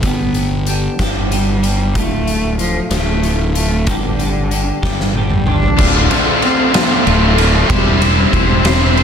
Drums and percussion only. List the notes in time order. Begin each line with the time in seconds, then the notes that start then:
0.03 kick, closed hi-hat
0.34 closed hi-hat
0.67 closed hi-hat
0.99 kick, snare, closed hi-hat
1.32 closed hi-hat
1.63 closed hi-hat
1.95 kick, closed hi-hat
2.27 closed hi-hat
2.59 closed hi-hat
2.91 snare, closed hi-hat
3.23 closed hi-hat
3.55 closed hi-hat
3.87 kick, closed hi-hat
4.20 closed hi-hat
4.51 closed hi-hat
4.83 kick, snare
5.00 snare
5.15 high tom
5.30 mid tom
5.47 mid tom
5.63 floor tom
5.78 kick, crash
6.11 ride
6.42 ride
6.74 snare, ride
7.07 ride
7.38 ride
7.70 kick, ride
8.02 ride
8.33 kick, ride
8.65 snare, ride
8.97 ride